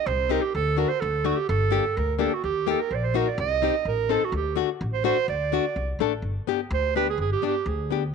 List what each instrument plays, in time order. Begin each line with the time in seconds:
0.06 upright bass C2, clarinet C5
0.29 nylon-string guitar C4 D#4 G4, clarinet A#4
0.42 clarinet G4
0.54 upright bass D2, clarinet A4
0.77 nylon-string guitar A3 D4 F#4, clarinet A#4
0.88 clarinet C5
1.00 upright bass D2, clarinet A4
1.25 nylon-string guitar A3 D4 F#4, clarinet F#4
1.36 clarinet G4
1.49 upright bass G1, clarinet A4
1.71 nylon-string guitar A#3 D4 G4
1.96 upright bass D2, clarinet A#4
2.17 nylon-string guitar A#3 D4 G4, clarinet A4 A#4
2.33 clarinet F#4
2.44 upright bass D#2, clarinet G4
2.67 nylon-string guitar A#3 D#4 G4, clarinet A4
2.80 clarinet A#4
2.91 upright bass A#1, clarinet C5
2.95 clarinet D5
3.03 clarinet C5
3.14 nylon-string guitar A#3 D#4 F#4, clarinet A#4
3.27 clarinet D5
3.38 upright bass C2, clarinet D#5
3.62 nylon-string guitar C4 D#4 G4
3.85 upright bass A1, clarinet A#4
4.09 nylon-string guitar C4 D#4 A4, clarinet A4
4.25 clarinet F#4
4.32 upright bass D2
4.36 clarinet G4
4.56 nylon-string guitar A3 D4 F#4
4.81 upright bass A1
4.93 clarinet C5
5.04 nylon-string guitar A3 D4 F#4, clarinet C5
5.28 upright bass D2, clarinet D5
5.52 nylon-string guitar A3 D4 F#4
5.76 upright bass C2
5.99 upright bass A1, nylon-string guitar A3 D4 A4
6.22 upright bass G1
6.47 nylon-string guitar B3 D4 G4
6.71 upright bass D2, clarinet C5
6.95 nylon-string guitar B3 D4 G4, clarinet B4
7.10 clarinet G#4
7.18 upright bass G1, clarinet G#4
7.32 clarinet G4
7.42 nylon-string guitar B3 D4 G4
7.46 clarinet G4
7.66 upright bass D2, clarinet G#4
7.90 nylon-string guitar B3 D4 G4